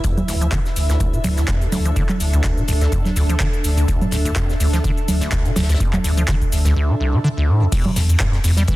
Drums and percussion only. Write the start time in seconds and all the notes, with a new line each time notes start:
0.04 kick, closed hi-hat, shaker
0.17 closed hi-hat, low conga, shaker
0.28 snare, closed hi-hat, open hi-hat, shaker
0.42 closed hi-hat, shaker
0.51 kick, snare, clap, closed hi-hat, shaker
0.65 snare, closed hi-hat, shaker
0.76 closed hi-hat, open hi-hat, shaker
0.90 snare, closed hi-hat, shaker
1.00 kick, closed hi-hat, shaker
1.13 closed hi-hat, shaker
1.24 closed hi-hat, open hi-hat, low conga, shaker
1.37 snare, closed hi-hat, shaker
1.48 kick, snare, clap, closed hi-hat, shaker
1.61 closed hi-hat, shaker
1.72 closed hi-hat, open hi-hat, low conga, shaker
1.85 closed hi-hat, shaker
1.96 kick, closed hi-hat, shaker
2.09 clap, closed hi-hat, low conga, shaker
2.20 closed hi-hat, open hi-hat, shaker
2.33 closed hi-hat, shaker
2.44 kick, snare, clap, closed hi-hat, shaker
2.57 closed hi-hat, shaker
2.68 closed hi-hat, open hi-hat, shaker
2.81 snare, closed hi-hat, shaker
2.92 kick, closed hi-hat, shaker
3.05 snare, closed hi-hat, low conga, shaker
3.16 closed hi-hat, open hi-hat, shaker
3.29 closed hi-hat, shaker
3.39 kick, snare, clap, closed hi-hat, shaker
3.53 closed hi-hat, shaker
3.64 closed hi-hat, open hi-hat, shaker
3.77 closed hi-hat, shaker
3.88 kick, closed hi-hat, shaker
4.01 closed hi-hat, low conga, shaker
4.11 snare, closed hi-hat, open hi-hat, shaker
4.25 closed hi-hat, shaker
4.36 kick, snare, clap, closed hi-hat, shaker
4.49 snare, closed hi-hat, shaker
4.60 closed hi-hat, open hi-hat, shaker
4.73 snare, closed hi-hat, shaker
4.84 kick, closed hi-hat, shaker
4.97 closed hi-hat, shaker
5.08 closed hi-hat, open hi-hat, low conga, shaker
5.21 snare, closed hi-hat, shaker
5.32 kick, snare, clap, closed hi-hat, shaker
5.45 closed hi-hat, shaker
5.56 snare, closed hi-hat, open hi-hat, low conga, shaker
5.63 snare, closed hi-hat
5.69 snare, closed hi-hat, shaker
5.74 snare, closed hi-hat
5.80 kick, closed hi-hat, shaker
5.93 clap, closed hi-hat, low conga, shaker
6.04 open hi-hat, shaker
6.17 closed hi-hat, shaker
6.28 kick, snare, clap, closed hi-hat, shaker
6.41 kick, closed hi-hat, shaker
6.52 closed hi-hat, open hi-hat, shaker
6.65 snare, closed hi-hat, shaker
7.72 kick, closed hi-hat, crash, shaker
7.85 low conga
7.96 snare, closed hi-hat, open hi-hat, shaker
8.09 closed hi-hat, shaker
8.20 kick, snare, clap, closed hi-hat, shaker
8.33 snare, closed hi-hat
8.44 closed hi-hat, open hi-hat, shaker
8.57 snare, closed hi-hat, shaker
8.68 kick, closed hi-hat, shaker